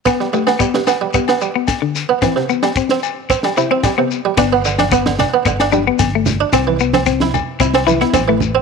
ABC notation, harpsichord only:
X:1
M:4/4
L:1/16
Q:1/4=111
K:G
V:1 name="Harpsichord"
B, G, G,, B, G, G,, B, G, G,, B, G, z4 B, | E, C, z G, z C z2 C G, C, C G, C, z G, | D B, D, D B, D, D B, D, D G, z4 D | C E, z C z E z2 E C E, E C E, z C |]